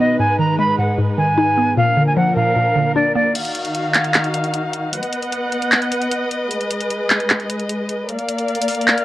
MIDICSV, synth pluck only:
0, 0, Header, 1, 2, 480
1, 0, Start_track
1, 0, Key_signature, -6, "minor"
1, 0, Tempo, 394737
1, 235, Time_signature, 4, 2, 24, 8
1, 11001, End_track
2, 0, Start_track
2, 0, Title_t, "Synth pluck"
2, 0, Program_c, 0, 84
2, 0, Note_on_c, 0, 47, 88
2, 0, Note_on_c, 0, 51, 85
2, 0, Note_on_c, 0, 59, 80
2, 0, Note_on_c, 0, 63, 95
2, 234, Note_off_c, 0, 47, 0
2, 234, Note_off_c, 0, 59, 0
2, 234, Note_off_c, 0, 63, 0
2, 235, Note_off_c, 0, 51, 0
2, 237, Note_on_c, 0, 44, 89
2, 473, Note_on_c, 0, 51, 76
2, 715, Note_on_c, 0, 56, 91
2, 942, Note_off_c, 0, 44, 0
2, 957, Note_on_c, 0, 44, 74
2, 1181, Note_off_c, 0, 44, 0
2, 1195, Note_on_c, 0, 44, 86
2, 1421, Note_off_c, 0, 51, 0
2, 1436, Note_on_c, 0, 51, 83
2, 1674, Note_on_c, 0, 63, 97
2, 1915, Note_off_c, 0, 56, 0
2, 1916, Note_on_c, 0, 59, 88
2, 2154, Note_on_c, 0, 46, 87
2, 2155, Note_off_c, 0, 44, 0
2, 2155, Note_off_c, 0, 51, 0
2, 2155, Note_off_c, 0, 59, 0
2, 2155, Note_off_c, 0, 63, 0
2, 2395, Note_on_c, 0, 50, 78
2, 2634, Note_on_c, 0, 53, 93
2, 2860, Note_off_c, 0, 46, 0
2, 2875, Note_on_c, 0, 46, 69
2, 3101, Note_off_c, 0, 46, 0
2, 3116, Note_on_c, 0, 46, 88
2, 3338, Note_off_c, 0, 50, 0
2, 3353, Note_on_c, 0, 50, 80
2, 3595, Note_on_c, 0, 62, 97
2, 3834, Note_off_c, 0, 53, 0
2, 3835, Note_on_c, 0, 58, 92
2, 4074, Note_off_c, 0, 50, 0
2, 4075, Note_off_c, 0, 46, 0
2, 4075, Note_off_c, 0, 58, 0
2, 4075, Note_off_c, 0, 62, 0
2, 11001, End_track
0, 0, End_of_file